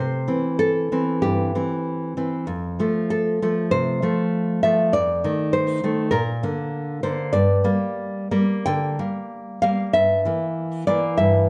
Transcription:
0.00 0.27 C3 soft
0.00 0.56 C5 medium
0.28 0.91 E3 soft
0.28 0.91 C4 soft
0.59 1.21 A4 medium
0.92 1.54 E3 soft
0.92 1.55 C4 soft
1.22 1.54 G2 soft
1.22 2.43 G4 medium
1.55 2.16 E3 soft
1.55 2.16 C4 soft
2.17 2.45 E3 soft
2.17 2.45 C4 soft
2.47 2.78 F2 soft
2.79 3.41 F3 soft
2.79 3.42 A3 soft
3.10 3.69 A4 medium
3.42 4.01 F3 soft
3.42 4.02 A3 soft
3.71 4.01 C3 soft
3.71 4.59 C5 medium
4.02 4.63 F3 soft
4.02 4.63 A3 soft
4.63 4.92 F3 soft
4.63 4.92 A3 soft
4.63 4.93 E5 medium
4.93 5.24 F2 medium
4.93 5.52 D5 medium
5.24 5.82 D#3 soft
5.24 5.83 A3 soft
5.53 6.10 C5 medium
5.84 6.11 D#3 soft
5.84 6.11 A3 soft
6.11 6.42 A#2 medium
6.11 6.99 A#4 medium
6.43 7.02 D3 soft
6.43 7.03 A#3 soft
7.03 7.32 D3 soft
7.03 7.32 A#3 soft
7.03 7.33 C5 medium
7.33 7.64 G2 medium
7.33 8.61 D5 medium
7.64 8.30 G3 soft
7.64 8.30 A#3 soft
8.31 8.98 G3 soft
8.31 8.98 A#3 soft
8.66 8.99 D3 soft
8.66 9.59 G5 medium
8.99 9.62 G3 soft
8.99 9.62 A#3 soft
9.62 9.92 G3 soft
9.62 9.92 A#3 soft
9.62 9.93 F5 medium
9.93 10.25 G2 medium
9.93 10.82 E5 medium
10.25 10.87 E3 soft
10.25 10.87 A#3 soft
10.87 11.49 E3 soft
10.87 11.49 A#3 soft
10.87 11.17 D5 medium
11.17 11.49 G2 soft
11.17 11.49 E5 medium

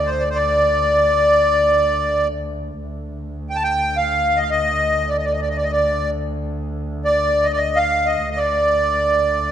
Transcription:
0.00 2.81 D2 medium
0.06 0.24 C5 medium
0.20 0.29 D5 medium
0.29 0.38 C5 medium
0.35 2.28 D5 medium
2.81 8.24 D2 medium
3.50 3.57 G5 medium
3.56 3.63 A5 medium
3.63 3.97 G5 medium
3.97 4.39 F5 medium
4.37 4.44 D#5 medium
4.42 4.50 F5 medium
4.50 5.10 D#5 medium
5.09 5.17 D5 medium
5.18 5.25 D#5 medium
5.25 5.33 D5 soft
5.32 5.40 D#5 medium
5.41 5.49 D5 soft
5.49 5.57 D#5 medium
5.57 5.65 D5 medium
5.63 5.72 D#5 medium
5.72 6.10 D5 medium
7.05 7.47 D5 medium
7.44 7.52 D#5 medium
7.52 7.59 D5 medium
7.56 7.78 D#5 medium
7.76 8.08 F5 medium
8.06 8.29 D#5 medium
8.24 9.52 D2 medium
8.31 8.39 D#5 medium
8.37 9.52 D5 medium

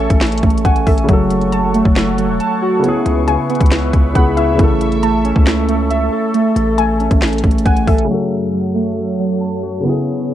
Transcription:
0.00 1.02 C#3 medium
0.00 0.42 A3 medium
0.00 1.04 A3 medium
0.00 1.09 C#4 medium
0.00 1.05 E4 medium
0.00 0.43 A4 medium
0.00 1.05 A4 medium
0.00 1.07 A4 medium
0.00 0.21 E5 loud
0.00 1.05 E5 medium
0.00 0.18 G#5 medium
0.00 8.05 C#6 medium
0.10 0.42 A1 loud
0.10 kick loud
0.10 closed hi-hat medium
0.21 snare loud
0.21 clap loud
0.21 closed hi-hat soft
0.27 closed hi-hat medium
0.32 closed hi-hat medium
0.38 closed hi-hat medium
0.43 0.64 A1 loud
0.43 1.09 A3 medium
0.43 kick medium
0.43 closed hi-hat soft
0.50 closed hi-hat medium
0.58 closed hi-hat medium
0.65 0.86 A1 loud
0.65 0.86 F#5 medium
0.65 1.09 G#5 medium
0.65 kick loud
0.65 closed hi-hat medium
0.76 closed hi-hat medium
0.87 1.08 A1 loud
0.87 1.09 A4 medium
0.87 1.07 E5 medium
0.87 kick loud
0.87 closed hi-hat soft
0.87 open hi-hat medium
0.98 closed hi-hat medium
1.04 2.78 C#3 medium
1.04 2.79 A3 medium
1.09 1.82 F#1 loud
1.09 1.51 F#3 loud
1.09 2.81 F#4 medium
1.09 2.82 A4 medium
1.09 2.82 C#5 medium
1.09 2.82 F#5 medium
1.09 kick loud
1.09 closed hi-hat medium
1.13 2.83 A4 medium
1.30 closed hi-hat medium
1.41 closed hi-hat soft
1.52 2.17 F#3 medium
1.52 2.80 A5 medium
1.52 closed hi-hat medium
1.74 2.84 A3 medium
1.74 closed hi-hat medium
1.85 2.31 F#1 loud
1.85 kick loud
1.96 snare loud
1.96 clap loud
1.96 closed hi-hat medium
2.18 2.84 F#3 medium
2.18 closed hi-hat medium
2.29 2.40 E1 loud
2.40 2.84 A5 loud
2.40 closed hi-hat medium
2.62 2.84 F#4 medium
2.79 4.10 C#3 medium
2.79 4.12 B3 medium
2.84 3.26 C#3 loud
2.84 4.13 E4 medium
2.84 4.57 B4 medium
2.84 8.05 E5 medium
2.84 closed hi-hat medium
2.89 4.15 G#4 medium
3.06 3.37 C#2 loud
3.06 closed hi-hat medium
3.27 3.92 C#3 medium
3.27 3.69 G#5 medium
3.27 closed hi-hat medium
3.49 4.59 B3 medium
3.49 closed hi-hat soft
3.55 closed hi-hat medium
3.61 3.92 C#2 loud
3.61 kick loud
3.61 closed hi-hat medium
3.66 closed hi-hat medium
3.71 snare loud
3.71 clap loud
3.71 closed hi-hat medium
3.93 4.14 C#2 loud
3.93 4.59 C#3 medium
3.93 kick medium
3.93 closed hi-hat medium
4.13 4.50 C#2 loud
4.13 4.53 C#3 medium
4.13 4.59 B3 medium
4.13 4.59 E4 medium
4.13 4.36 F#5 medium
4.13 4.59 B5 loud
4.13 kick loud
4.13 closed hi-hat medium
4.18 4.60 G#4 medium
4.37 4.59 E4 medium
4.37 4.58 E5 medium
4.37 closed hi-hat medium
4.48 4.59 D2 loud
4.54 8.03 C#3 medium
4.54 8.05 A3 medium
4.59 5.33 A1 loud
4.59 5.02 A3 loud
4.59 8.06 E4 medium
4.59 8.06 A4 medium
4.59 kick loud
4.59 closed hi-hat medium
4.64 8.08 A4 medium
4.81 closed hi-hat medium
4.92 closed hi-hat soft
5.03 5.67 A3 medium
5.03 6.30 A5 medium
5.03 closed hi-hat medium
5.25 6.56 C#4 medium
5.25 closed hi-hat medium
5.36 6.09 C#2 loud
5.36 kick loud
5.47 snare loud
5.47 clap loud
5.47 closed hi-hat medium
5.69 6.33 A3 medium
5.69 closed hi-hat medium
5.90 7.22 E5 medium
5.90 closed hi-hat medium
6.12 7.44 A4 medium
6.34 6.77 A3 medium
6.34 closed hi-hat medium
6.56 7.09 A1 loud
6.56 closed hi-hat medium
6.78 7.42 A3 medium
6.78 7.19 G#5 medium
6.78 closed hi-hat medium
7.00 8.09 C#4 medium
7.00 closed hi-hat soft
7.11 7.42 A1 loud
7.11 kick loud
7.11 closed hi-hat medium
7.22 snare loud
7.22 clap loud
7.22 closed hi-hat medium
7.27 closed hi-hat medium
7.33 closed hi-hat medium
7.38 closed hi-hat medium
7.43 7.65 A1 loud
7.43 8.09 A3 medium
7.43 kick medium
7.43 closed hi-hat soft
7.51 closed hi-hat medium
7.58 closed hi-hat medium
7.66 7.87 A1 loud
7.66 7.86 F#5 medium
7.66 8.09 G#5 loud
7.66 kick loud
7.66 closed hi-hat medium
7.77 closed hi-hat medium
7.87 8.08 A1 loud
7.87 8.09 A4 medium
7.87 8.08 E5 medium
7.87 kick loud
7.87 closed hi-hat soft
7.87 open hi-hat medium
7.98 closed hi-hat medium
8.05 9.79 C#3 medium
8.05 9.80 A3 medium
8.09 9.83 F#2 medium
8.09 8.52 F#3 medium
8.09 9.83 F#3 medium
8.09 9.82 F#4 medium
8.09 9.83 A4 medium
8.09 9.83 C#5 medium
8.14 9.83 A4 medium
8.31 closed hi-hat medium
8.42 closed hi-hat soft
8.53 9.18 F#3 medium
8.53 closed hi-hat medium
8.75 9.85 A3 medium
8.75 closed hi-hat medium
8.97 closed hi-hat medium
9.19 9.85 F#3 medium
9.19 closed hi-hat medium
9.41 9.85 A5 medium
9.41 closed hi-hat medium
9.63 9.85 F#4 medium
9.80 10.34 C#3 medium
9.80 10.34 B3 medium
9.84 10.27 C#3 medium
9.84 10.34 C#3 medium
9.84 10.34 B3 medium
9.84 10.34 E4 medium
9.84 10.34 C#5 medium
9.84 closed hi-hat medium
9.89 10.34 G#4 medium
10.07 closed hi-hat medium
10.28 10.34 C#3 medium
10.28 closed hi-hat medium

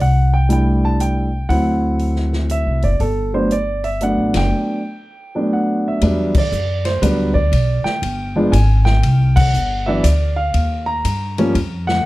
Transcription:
0.00 1.46 C2 medium
0.00 0.34 F#5 medium
0.00 open hi-hat soft
0.34 0.51 G5 medium
0.49 1.26 G3 medium
0.49 1.26 A3 soft
0.49 1.26 D4 soft
0.49 1.26 E4 medium
0.49 0.85 G5 medium
0.49 closed hi-hat soft
0.85 1.01 A5 medium
1.00 1.52 G5 medium
1.00 closed hi-hat medium
1.49 2.63 D2 medium
1.49 2.91 F#3 medium
1.49 2.91 A3 soft
1.49 2.91 C4 medium
1.49 2.91 E4 medium
1.49 2.46 F#5 medium
1.49 kick soft
1.49 open hi-hat soft
1.99 open hi-hat soft
2.16 snare soft
2.33 snare soft
2.50 2.85 E5 medium
2.50 closed hi-hat soft
2.67 2.83 C2 medium
2.82 2.99 F#1 medium
2.82 3.00 D5 medium
2.82 open hi-hat soft
3.00 4.14 G1 medium
3.00 3.32 A4 medium
3.00 kick soft
3.00 open hi-hat soft
3.34 3.49 F#3 medium
3.34 3.50 A3 medium
3.34 3.50 B3 medium
3.34 3.50 D4 medium
3.34 3.52 C5 medium
3.51 3.86 D5 medium
3.51 closed hi-hat soft
3.84 4.00 E5 medium
3.84 open hi-hat soft
4.01 4.78 F#3 medium
4.01 4.78 A3 soft
4.01 4.79 B3 medium
4.01 4.79 D4 medium
4.01 4.37 F#5 medium
4.01 closed hi-hat soft
4.18 4.33 A1 medium
4.34 4.50 F#1 medium
4.34 5.50 G5 medium
4.34 snare medium
4.34 ride medium
5.35 5.99 F#3 medium
5.35 6.00 A3 soft
5.35 6.00 B3 medium
5.35 6.00 D4 medium
5.53 5.87 F#5 medium
5.88 6.39 E5 medium
6.01 6.51 E2 medium
6.01 6.33 F#3 medium
6.01 6.33 G3 medium
6.01 6.33 B3 medium
6.01 6.33 D4 medium
6.01 kick soft
6.01 ride medium
6.35 6.89 D5 medium
6.35 kick medium
6.35 crash medium
6.52 7.01 F#2 medium
6.52 hi-hat pedal medium
6.85 7.04 C5 medium
6.85 snare soft
6.85 ride soft
7.02 7.51 D2 medium
7.02 7.33 F#3 medium
7.02 7.33 G3 medium
7.02 7.33 B3 medium
7.02 7.33 D4 medium
7.02 7.33 B4 medium
7.02 kick soft
7.02 hi-hat pedal medium
7.02 ride medium
7.34 7.87 D5 medium
7.34 kick medium
7.52 7.83 B1 medium
7.52 kick soft
7.52 ride medium
7.84 8.55 G5 medium
7.84 muted upright bass stroke soft
7.84 snare medium
8.02 8.52 G1 medium
8.02 kick soft
8.02 ride medium
8.36 8.52 F3 medium
8.36 8.52 G#3 medium
8.36 8.52 B3 medium
8.36 8.52 D4 medium
8.52 9.02 G#1 medium
8.52 8.84 G#5 medium
8.52 kick soft
8.52 hi-hat pedal medium
8.52 ride medium
8.85 9.38 G5 loud
8.85 snare medium
9.03 9.53 C2 medium
9.03 kick soft
9.03 ride medium
9.36 9.88 F#5 loud
9.36 kick medium
9.36 crash medium
9.54 10.03 G1 medium
9.54 hi-hat pedal medium
9.86 10.03 E3 medium
9.86 10.03 F#3 medium
9.86 10.03 B3 medium
9.86 10.04 D4 medium
9.86 10.05 E5 medium
10.03 10.53 D2 medium
10.03 10.35 D5 medium
10.03 kick soft
10.03 hi-hat pedal medium
10.03 ride medium
10.36 10.89 F5 loud
10.54 11.03 D#2 medium
10.54 kick soft
10.54 ride medium
10.86 11.84 A#5 loud
11.05 11.54 G2 medium
11.05 kick soft
11.05 hi-hat pedal medium
11.05 ride medium
11.38 11.54 F3 medium
11.38 11.54 G3 medium
11.38 11.54 A#3 medium
11.38 11.54 C#4 medium
11.38 ride soft
11.55 12.04 F2 medium
11.55 kick soft
11.55 ride medium
11.87 12.06 F#5 loud
11.87 snare medium

